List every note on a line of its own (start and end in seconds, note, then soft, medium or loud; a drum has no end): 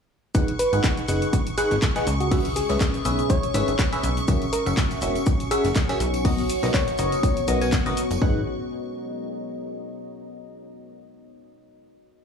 0.35 0.44 G#1 loud
0.35 0.52 D#4 medium
0.35 0.52 G#4 medium
0.35 4.98 G#4 medium
0.35 0.52 B4 medium
0.35 0.52 F#5 medium
0.35 8.23 C#6 medium
0.35 kick loud
0.35 closed hi-hat medium
0.35 shaker medium
0.35 shaker soft
0.48 closed hi-hat medium
0.59 0.76 B4 loud
0.59 4.98 D#6 medium
0.59 open hi-hat loud
0.59 shaker medium
0.73 0.80 G#1 loud
0.73 1.06 D#4 medium
0.73 1.06 G#4 medium
0.73 1.06 B4 medium
0.73 1.06 F#5 medium
0.73 closed hi-hat soft
0.73 shaker soft
0.84 kick loud
0.84 snare loud
0.84 clap loud
0.84 closed hi-hat medium
0.84 shaker medium
0.84 shaker soft
0.97 closed hi-hat medium
0.97 shaker soft
1.08 1.26 F#1 medium
1.08 1.36 D#4 medium
1.08 1.36 G#4 medium
1.08 1.36 B4 medium
1.08 1.36 F#5 medium
1.08 open hi-hat loud
1.08 shaker medium
1.13 2.96 A#5 medium
1.22 closed hi-hat soft
1.22 shaker soft
1.33 1.42 C#2 medium
1.33 kick loud
1.33 closed hi-hat medium
1.33 shaker medium
1.33 shaker soft
1.47 closed hi-hat medium
1.47 shaker soft
1.58 1.75 D#4 medium
1.58 1.74 G#4 loud
1.58 1.75 G#4 medium
1.58 1.75 B4 medium
1.58 1.75 F#5 loud
1.58 open hi-hat loud
1.58 shaker medium
1.71 1.79 G#1 medium
1.71 snare soft
1.71 closed hi-hat soft
1.71 shaker soft
1.82 kick loud
1.82 snare loud
1.82 clap loud
1.82 closed hi-hat medium
1.82 shaker medium
1.82 shaker soft
1.96 2.06 D#4 medium
1.96 2.10 G#4 medium
1.96 2.06 G#4 medium
1.96 2.06 B4 medium
1.96 2.06 F#5 loud
1.96 snare medium
1.96 closed hi-hat medium
1.96 shaker soft
2.07 2.62 C#2 loud
2.07 4.98 C#4 medium
2.07 open hi-hat loud
2.07 shaker medium
2.20 2.27 F#4 medium
2.20 closed hi-hat soft
2.20 shaker soft
2.31 2.49 C#4 medium
2.31 2.40 F#4 medium
2.31 2.49 G#4 medium
2.31 2.49 B4 medium
2.31 2.49 E5 medium
2.31 kick loud
2.31 closed hi-hat medium
2.31 open hi-hat medium
2.31 shaker soft
2.45 closed hi-hat medium
2.45 shaker soft
2.56 2.72 G#4 loud
2.56 open hi-hat loud
2.56 shaker medium
2.69 2.77 C#2 loud
2.69 3.03 C#4 medium
2.69 3.03 G#4 medium
2.69 3.03 B4 medium
2.69 3.03 E5 medium
2.69 snare soft
2.69 closed hi-hat soft
2.69 shaker soft
2.80 kick loud
2.80 snare loud
2.80 clap loud
2.80 closed hi-hat medium
2.80 shaker soft
2.80 shaker medium
2.94 closed hi-hat medium
2.94 shaker soft
3.05 3.22 B1 medium
3.05 3.32 C#4 medium
3.05 3.32 G#4 medium
3.05 3.32 B4 medium
3.05 3.32 E5 medium
3.05 open hi-hat loud
3.05 shaker medium
3.19 closed hi-hat soft
3.19 shaker soft
3.30 3.79 C#5 loud
3.30 kick loud
3.30 closed hi-hat medium
3.30 shaker medium
3.30 shaker soft
3.43 closed hi-hat medium
3.43 shaker soft
3.54 3.63 G#1 medium
3.54 3.72 C#4 medium
3.54 3.72 G#4 medium
3.54 3.72 B4 medium
3.54 3.72 E5 loud
3.54 open hi-hat loud
3.54 shaker medium
3.68 3.75 G#1 medium
3.68 closed hi-hat soft
3.68 shaker soft
3.79 kick loud
3.79 snare loud
3.79 clap loud
3.79 closed hi-hat medium
3.79 shaker medium
3.79 shaker soft
3.93 4.08 C#4 loud
3.93 4.08 G#4 medium
3.93 4.08 B4 medium
3.93 4.08 E5 loud
3.93 closed hi-hat medium
3.93 shaker soft
4.03 4.21 B1 medium
4.03 open hi-hat loud
4.03 shaker medium
4.17 closed hi-hat soft
4.17 shaker soft
4.28 4.37 F#1 loud
4.28 4.46 C#4 medium
4.28 8.22 F#4 medium
4.28 4.46 F#4 medium
4.28 4.46 A#4 medium
4.28 4.46 E5 medium
4.28 kick loud
4.28 closed hi-hat medium
4.28 tambourine medium
4.28 shaker medium
4.28 shaker soft
4.42 closed hi-hat medium
4.42 tambourine soft
4.47 8.22 C#5 medium
4.52 4.69 A#4 loud
4.52 6.90 G#5 medium
4.52 open hi-hat loud
4.52 shaker medium
4.66 4.74 F#1 loud
4.66 4.99 C#4 medium
4.66 4.99 F#4 medium
4.66 4.99 A#4 medium
4.66 4.99 E5 medium
4.66 closed hi-hat soft
4.66 tambourine medium
4.66 shaker soft
4.77 kick loud
4.77 snare loud
4.77 clap loud
4.77 closed hi-hat medium
4.77 shaker soft
4.77 shaker medium
4.91 closed hi-hat medium
4.91 tambourine soft
4.91 shaker soft
5.01 5.19 E1 medium
5.01 5.29 C#4 medium
5.01 5.29 F#4 medium
5.01 5.29 A#4 medium
5.01 5.29 E5 medium
5.01 open hi-hat loud
5.01 shaker medium
5.16 closed hi-hat soft
5.16 tambourine loud
5.16 shaker soft
5.26 5.35 A#1 medium
5.26 kick loud
5.26 closed hi-hat medium
5.26 tambourine medium
5.26 shaker medium
5.26 shaker soft
5.40 closed hi-hat medium
5.40 tambourine soft
5.40 shaker soft
5.51 5.69 C#4 medium
5.51 5.69 F#4 medium
5.51 5.67 G#4 medium
5.51 5.69 A#4 medium
5.51 5.69 E5 loud
5.51 open hi-hat loud
5.51 shaker medium
5.64 5.72 F#1 medium
5.64 snare soft
5.64 closed hi-hat soft
5.64 tambourine medium
5.64 shaker soft
5.75 kick loud
5.75 snare loud
5.75 clap loud
5.75 closed hi-hat medium
5.75 tambourine medium
5.75 shaker medium
5.75 shaker soft
5.89 5.99 C#4 loud
5.89 5.99 F#4 medium
5.89 6.04 G#4 loud
5.89 5.99 A#4 medium
5.89 5.99 E5 loud
5.89 snare medium
5.89 closed hi-hat medium
5.89 tambourine soft
5.89 shaker soft
6.00 6.56 B1 loud
6.00 8.22 B3 medium
6.00 open hi-hat loud
6.00 shaker medium
6.14 closed hi-hat soft
6.14 tambourine medium
6.14 shaker soft
6.25 6.42 B3 medium
6.25 6.42 F#4 medium
6.25 6.42 A#4 medium
6.25 6.42 D#5 medium
6.25 kick loud
6.25 closed hi-hat medium
6.25 open hi-hat medium
6.25 tambourine medium
6.25 shaker soft
6.38 closed hi-hat medium
6.38 tambourine soft
6.38 shaker soft
6.49 open hi-hat loud
6.49 shaker medium
6.63 6.70 B1 loud
6.63 6.96 B3 medium
6.63 6.96 F#4 medium
6.63 6.96 A#4 medium
6.63 6.96 D#5 medium
6.63 snare medium
6.63 closed hi-hat soft
6.63 tambourine medium
6.63 shaker soft
6.74 6.90 C#5 loud
6.74 kick loud
6.74 snare loud
6.74 clap loud
6.74 closed hi-hat medium
6.74 tambourine medium
6.74 shaker soft
6.74 shaker medium
6.87 closed hi-hat medium
6.87 tambourine soft
6.87 shaker soft
6.98 7.16 F#1 medium
6.98 7.26 B3 medium
6.98 7.26 F#4 medium
6.98 7.26 A#4 medium
6.98 7.68 C#5 loud
6.98 7.26 D#5 medium
6.98 open hi-hat loud
6.98 shaker medium
7.12 closed hi-hat soft
7.12 tambourine medium
7.12 shaker soft
7.23 kick loud
7.23 closed hi-hat medium
7.23 tambourine medium
7.23 shaker soft
7.23 shaker medium
7.37 closed hi-hat medium
7.37 tambourine soft
7.37 shaker soft
7.48 7.79 B1 loud
7.48 7.59 B3 medium
7.48 7.59 F#4 medium
7.48 7.59 A#4 medium
7.48 7.59 D#5 loud
7.48 open hi-hat loud
7.48 shaker medium
7.61 7.77 B3 medium
7.61 7.77 F#4 medium
7.61 7.77 A#4 medium
7.61 7.77 G#5 medium
7.61 closed hi-hat soft
7.61 tambourine medium
7.61 shaker soft
7.72 kick loud
7.72 snare loud
7.72 clap loud
7.72 closed hi-hat medium
7.72 tambourine medium
7.72 shaker medium
7.72 shaker soft
7.86 7.93 F#1 medium
7.86 8.02 B3 medium
7.86 8.02 F#4 medium
7.86 8.02 A#4 medium
7.86 8.02 D#5 loud
7.86 closed hi-hat medium
7.86 tambourine soft
7.86 shaker soft
7.97 open hi-hat loud
7.97 shaker medium
8.11 8.18 F#1 medium
8.11 closed hi-hat soft
8.11 tambourine medium
8.11 shaker soft
8.22 8.44 G#1 loud
8.22 8.40 D#4 medium
8.22 10.14 G#4 medium
8.22 8.40 G#4 medium
8.22 8.40 B4 medium
8.22 8.40 F#5 medium
8.22 kick loud
8.30 10.14 D#5 medium
8.37 10.14 A#5 medium